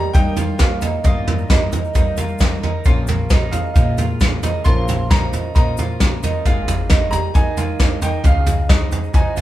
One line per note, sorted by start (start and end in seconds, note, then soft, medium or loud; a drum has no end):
0.00 1.01 G1 medium
0.00 1.01 G2 medium
0.00 0.12 G3 loud
0.00 1.02 G3 medium
0.00 0.14 A#3 soft
0.00 1.02 A#3 medium
0.00 0.13 D#4 medium
0.00 0.14 D#4 medium
0.00 1.02 D#4 medium
0.00 0.14 A#4 medium
0.00 1.02 A#4 medium
0.00 1.02 D#5 medium
0.00 0.12 A#5 loud
0.13 0.56 D#3 medium
0.13 0.37 G3 loud
0.13 0.83 G3 loud
0.13 0.37 A#3 loud
0.13 0.37 D#4 medium
0.13 0.37 D#4 loud
0.13 0.35 A#4 loud
0.13 0.61 G5 loud
0.13 kick loud
0.13 floor tom loud
0.13 shaker medium
0.36 0.59 A#3 soft
0.36 0.59 D#4 medium
0.36 0.82 F4 medium
0.36 0.59 A#4 medium
0.36 floor tom medium
0.36 shaker loud
0.58 1.01 A#2 medium
0.58 0.82 G3 medium
0.58 0.82 A#3 medium
0.58 0.81 D#4 medium
0.58 0.79 A#4 medium
0.58 1.06 F5 medium
0.58 kick loud
0.58 snare loud
0.58 floor tom medium
0.58 shaker medium
0.80 1.04 A#3 medium
0.80 1.05 D#4 medium
0.80 1.04 A#4 medium
0.80 floor tom loud
0.80 shaker loud
1.04 2.82 G1 medium
1.04 1.74 G2 loud
1.04 2.82 G2 medium
1.04 1.47 A#2 medium
1.04 1.27 G3 medium
1.04 2.82 G3 medium
1.04 2.82 A#3 medium
1.04 1.28 A#3 medium
1.04 2.82 D#4 medium
1.04 1.27 D#4 medium
1.04 1.49 F4 loud
1.04 2.82 A#4 medium
1.04 1.25 A#4 loud
1.04 1.47 D#5 medium
1.04 2.82 D#5 medium
1.04 kick loud
1.04 floor tom medium
1.04 shaker medium
1.26 1.49 A#3 medium
1.26 1.49 D#4 medium
1.26 1.50 A#4 medium
1.26 floor tom loud
1.38 shaker soft
1.48 1.72 G3 medium
1.48 1.73 A#3 medium
1.48 1.94 D#4 medium
1.48 1.72 D#4 medium
1.48 1.70 A#4 medium
1.48 kick loud
1.48 snare loud
1.48 floor tom medium
1.48 shaker medium
1.71 1.93 A#3 soft
1.71 1.94 D#4 medium
1.71 1.95 A#4 medium
1.71 floor tom medium
1.71 shaker loud
1.84 shaker soft
1.93 2.17 G3 loud
1.93 2.64 G3 loud
1.93 2.17 A#3 medium
1.93 2.17 D#4 medium
1.93 2.17 D#4 loud
1.93 2.15 A#4 loud
1.93 kick loud
1.93 floor tom loud
1.93 shaker medium
2.16 2.38 A#3 medium
2.16 2.40 D#4 medium
2.16 2.62 F4 medium
2.16 2.40 A#4 medium
2.16 floor tom medium
2.16 shaker loud
2.28 shaker soft
2.38 2.62 G3 medium
2.38 2.62 A#3 medium
2.38 2.62 D#4 medium
2.38 2.60 A#4 medium
2.38 kick loud
2.38 snare loud
2.38 floor tom medium
2.38 shaker medium
2.62 2.87 A#3 medium
2.62 2.85 D#4 medium
2.62 2.86 D#4 medium
2.62 2.85 A#4 medium
2.62 floor tom medium
2.84 4.62 A#1 medium
2.84 3.54 A#1 loud
2.84 4.62 A#2 medium
2.84 3.08 A#2 medium
2.84 4.62 F3 medium
2.84 3.08 F3 medium
2.84 4.62 A#3 medium
2.84 4.62 C#4 medium
2.84 3.09 C#4 medium
2.84 3.30 F4 loud
2.84 3.09 F4 loud
2.84 4.62 A#4 medium
2.84 3.07 A#4 loud
2.84 4.62 C#5 medium
2.84 kick loud
2.84 floor tom medium
2.84 shaker medium
3.07 3.30 F4 medium
3.07 3.31 A#4 medium
3.07 floor tom loud
3.07 shaker loud
3.12 3.29 C#4 medium
3.29 3.52 F3 medium
3.29 3.53 C#4 medium
3.29 3.74 D#4 loud
3.29 3.53 F4 medium
3.29 3.51 A#4 medium
3.29 kick loud
3.29 snare loud
3.29 floor tom loud
3.29 shaker medium
3.51 3.74 C#3 medium
3.51 3.76 F4 soft
3.51 3.75 A#4 soft
3.51 3.73 F5 medium
3.51 floor tom medium
3.51 shaker loud
3.55 3.75 C#4 soft
3.74 3.98 A#2 medium
3.74 4.44 A#2 loud
3.74 4.62 C#3 medium
3.74 3.98 F3 medium
3.74 3.99 C#4 loud
3.74 3.98 D#4 medium
3.74 3.99 F4 loud
3.74 3.96 A#4 loud
3.74 4.61 F5 medium
3.74 kick loud
3.74 floor tom medium
3.74 shaker medium
3.98 4.21 C#4 soft
3.98 4.42 F4 medium
3.98 4.22 F4 soft
3.98 4.20 A#4 medium
3.98 floor tom loud
3.98 shaker loud
4.20 4.43 F3 medium
4.20 4.44 C#4 medium
4.20 4.43 F4 medium
4.20 kick loud
4.20 snare loud
4.20 floor tom medium
4.20 shaker medium
4.25 4.41 A#4 medium
4.43 4.65 C#4 medium
4.43 4.64 D#4 medium
4.43 4.65 F4 medium
4.43 4.65 A#4 medium
4.43 floor tom loud
4.43 shaker loud
4.64 6.41 A#1 medium
4.64 5.34 A#1 loud
4.64 4.88 A#2 medium
4.64 6.41 A#2 medium
4.64 4.88 F3 medium
4.64 5.98 F3 medium
4.64 5.07 F3 loud
4.64 5.98 A#3 medium
4.64 5.98 C#4 medium
4.64 4.88 C#4 medium
4.64 5.09 F4 medium
4.64 4.88 F4 medium
4.64 5.98 A#4 medium
4.64 4.86 A#4 loud
4.64 5.98 C#5 medium
4.64 5.11 C6 loud
4.64 kick loud
4.64 floor tom medium
4.64 shaker medium
4.87 5.08 C#4 soft
4.87 5.10 F4 medium
4.87 5.10 A#4 medium
4.87 floor tom loud
4.87 shaker loud
5.08 5.32 F3 medium
5.08 5.52 F3 loud
5.08 5.33 C#4 medium
5.08 5.54 D#4 loud
5.08 5.33 F4 medium
5.08 5.31 A#4 medium
5.08 5.54 A#5 loud
5.08 kick loud
5.08 snare loud
5.08 floor tom medium
5.08 shaker medium
5.32 5.55 C#4 soft
5.32 5.55 F4 medium
5.32 5.55 A#4 soft
5.32 floor tom medium
5.32 shaker loud
5.54 5.77 A#2 medium
5.54 6.24 A#2 loud
5.54 6.18 F3 medium
5.54 5.78 F3 medium
5.54 5.78 C#4 loud
5.54 5.78 D#4 medium
5.54 5.78 F4 medium
5.54 5.77 A#4 loud
5.54 6.19 A#5 medium
5.54 kick loud
5.54 floor tom medium
5.54 shaker medium
5.77 6.00 C#4 soft
5.77 6.22 F4 medium
5.77 6.01 F4 medium
5.77 6.00 A#4 medium
5.77 floor tom medium
5.77 shaker loud
6.00 6.23 F3 medium
6.00 6.45 F3 medium
6.00 6.44 A#3 medium
6.00 6.23 C#4 medium
6.00 6.46 C#4 soft
6.00 6.24 F4 medium
6.00 6.45 A#4 soft
6.00 6.22 A#4 medium
6.00 6.46 C5 medium
6.00 kick loud
6.00 snare loud
6.00 floor tom medium
6.00 shaker medium
6.23 6.46 C#4 medium
6.23 6.45 D#4 medium
6.23 6.46 F4 medium
6.23 6.45 A#4 medium
6.23 floor tom loud
6.23 shaker loud
6.45 7.13 G#1 loud
6.45 8.21 G#1 medium
6.45 8.21 G#2 medium
6.45 6.68 G#3 medium
6.45 8.21 G#3 medium
6.45 8.21 A#3 medium
6.45 6.68 A#3 loud
6.45 8.21 D#4 medium
6.45 6.68 D#4 loud
6.45 6.89 F4 loud
6.45 6.67 G#4 loud
6.45 8.21 A#4 medium
6.45 8.21 D#5 medium
6.45 kick loud
6.45 floor tom medium
6.45 shaker medium
6.68 6.90 A#3 medium
6.68 6.91 D#4 medium
6.68 6.90 G#4 medium
6.68 floor tom loud
6.68 shaker loud
6.89 7.12 G#3 medium
6.89 7.13 A#3 medium
6.89 7.33 D#4 medium
6.89 7.13 D#4 medium
6.89 7.12 G#4 medium
6.89 kick loud
6.89 snare loud
6.89 floor tom loud
6.89 shaker medium
7.11 7.33 G3 loud
7.11 7.35 D#4 soft
7.11 7.35 G#4 medium
7.11 7.32 A#5 loud
7.11 floor tom medium
7.11 shaker medium
7.16 7.34 A#3 soft
7.34 8.03 G#2 loud
7.34 7.97 D#3 medium
7.34 7.57 G#3 medium
7.34 7.58 A#3 medium
7.34 7.57 D#4 medium
7.34 7.58 D#4 medium
7.34 7.56 G#4 loud
7.34 8.04 G#5 loud
7.34 kick loud
7.34 floor tom medium
7.34 shaker medium
7.57 7.80 A#3 soft
7.57 7.81 D#4 medium
7.57 8.01 F4 medium
7.57 7.80 G#4 medium
7.57 floor tom medium
7.57 shaker medium
7.79 8.02 G#3 medium
7.79 8.03 A#3 medium
7.79 8.03 D#4 medium
7.79 8.01 G#4 medium
7.79 kick loud
7.79 snare loud
7.79 floor tom medium
7.79 shaker medium
8.02 8.23 D#3 medium
8.02 8.25 A#3 soft
8.02 8.24 D#4 medium
8.02 8.25 D#4 medium
8.02 8.24 G#4 medium
8.02 8.25 G5 medium
8.02 floor tom medium
8.02 shaker loud
8.24 8.92 C#2 loud
8.24 9.41 C#2 medium
8.24 8.47 C#3 medium
8.24 9.41 C#3 medium
8.24 8.66 C#3 medium
8.24 9.34 F3 medium
8.24 8.47 F3 medium
8.24 8.47 G#3 medium
8.24 9.34 C#4 medium
8.24 9.34 D#4 medium
8.24 8.47 D#4 medium
8.24 8.69 F4 loud
8.24 9.34 G#4 medium
8.24 8.46 G#4 loud
8.24 9.34 D#5 medium
8.24 8.71 F5 medium
8.24 kick loud
8.24 floor tom medium
8.24 shaker medium
8.46 8.70 D#4 medium
8.46 8.69 G#4 medium
8.46 floor tom loud
8.46 shaker loud
8.51 8.70 G#3 medium
8.69 9.11 G#2 medium
8.69 8.92 F3 medium
8.69 8.92 G#3 medium
8.69 9.13 D#4 medium
8.69 9.11 D#5 medium
8.69 kick loud
8.69 snare loud
8.69 floor tom loud
8.69 shaker medium
8.92 9.14 D#4 medium
8.92 9.14 G#4 medium
8.92 floor tom medium
8.92 shaker loud
8.96 9.14 G#3 soft
9.04 shaker soft
9.13 9.36 C#3 medium
9.13 9.41 C#3 loud
9.13 9.41 F3 medium
9.13 9.37 F3 loud
9.13 9.37 G#3 medium
9.13 9.36 D#4 medium
9.13 9.37 D#4 loud
9.13 9.35 G#4 medium
9.13 9.41 G#5 medium
9.13 kick loud
9.13 floor tom medium
9.13 shaker medium
9.36 9.41 F3 soft
9.36 9.41 C#4 soft
9.36 9.41 D#4 soft
9.36 9.41 F4 medium
9.36 9.41 G#4 medium
9.36 9.41 G#4 soft
9.36 floor tom medium
9.36 shaker loud